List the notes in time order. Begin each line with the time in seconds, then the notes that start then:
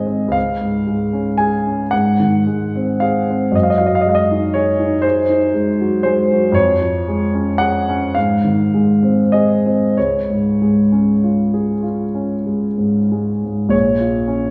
Already playing: G#2 D#3 G#3 C4 G#4 D#5
0.07 C4
0.28 C#2 F5
0.61 G#2
0.87 G#3
1.13 C#4
1.38 G#4 G#5
1.67 C#4
1.91 G#2 F#5
2.20 D#3
2.47 G#3
2.76 C4
3.00 G#4 F5
3.30 C4
3.52 F#2 D#5
3.63 F5
3.70 D#5
3.78 F#3 F5
3.86 D#5
3.95 F5
4.01 D#5
4.06 G#3 F5
4.15 D#5
4.31 D#4
4.54 G#4 C#5
4.79 D#4
5.02 G#4 C5
5.29 D#4
5.54 G#3
5.81 F#3
6.03 G#3 C5
6.32 F#3
6.52 F2 C#5
6.81 F3
7.08 G#3
7.34 C#4
7.58 G#4 F#5
7.89 C#4
8.15 G#2 F5
8.44 D#3
8.74 G#3
9.03 C4
9.32 G#4 D#5
9.66 C4
9.97 C#2 C#5
10.30 G#2
10.62 G#3
10.92 C#4
11.24 F4
11.54 G#4
11.83 F4
12.15 C#4
12.46 G#3
12.78 G#2
13.12 G#3
13.44 G#2
13.69 A#1 C#5
14.00 F4
14.28 C#4